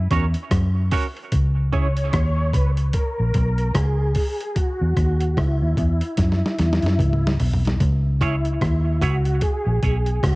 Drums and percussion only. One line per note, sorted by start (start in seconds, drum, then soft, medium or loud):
0.11 kick medium
0.11 closed hi-hat medium
0.34 closed hi-hat soft
0.51 kick loud
0.51 cross-stick loud
0.51 closed hi-hat medium
0.91 kick medium
0.91 open hi-hat medium
1.17 closed hi-hat medium
1.32 kick loud
1.32 closed hi-hat medium
1.73 kick medium
1.73 closed hi-hat medium
1.96 closed hi-hat medium
2.13 kick loud
2.13 cross-stick loud
2.13 closed hi-hat medium
2.53 kick loud
2.53 closed hi-hat medium
2.77 closed hi-hat medium
2.93 kick loud
2.93 closed hi-hat medium
3.34 kick medium
3.34 closed hi-hat medium
3.58 closed hi-hat soft
3.75 kick loud
3.75 cross-stick loud
3.75 closed hi-hat medium
4.15 kick medium
4.15 open hi-hat medium
4.41 closed hi-hat medium
4.56 kick loud
4.56 closed hi-hat medium
4.96 kick medium
4.96 cross-stick medium
4.96 closed hi-hat medium
5.20 closed hi-hat medium
5.37 kick loud
5.37 cross-stick loud
5.37 closed hi-hat medium
5.77 kick loud
5.77 closed hi-hat medium
6.01 closed hi-hat medium
6.17 kick loud
6.17 snare medium
6.17 closed hi-hat medium
6.32 snare soft
6.46 snare medium
6.59 snare medium
6.59 closed hi-hat medium
6.73 snare medium
6.82 snare medium
6.82 closed hi-hat soft
6.99 kick loud
6.99 closed hi-hat medium
6.99 mid tom medium
7.13 mid tom medium
7.27 snare loud
7.40 floor tom medium
7.40 open hi-hat medium
7.53 floor tom loud
7.65 snare medium
7.65 closed hi-hat medium
7.80 kick loud
7.80 closed hi-hat medium
8.21 kick medium
8.21 closed hi-hat medium
8.45 closed hi-hat medium
8.61 kick loud
8.61 cross-stick loud
8.61 closed hi-hat medium
9.02 kick loud
9.02 closed hi-hat medium
9.26 closed hi-hat medium
9.41 kick medium
9.41 closed hi-hat medium
9.83 kick medium
9.83 closed hi-hat medium
10.06 closed hi-hat soft
10.23 kick loud
10.23 cross-stick loud
10.23 closed hi-hat medium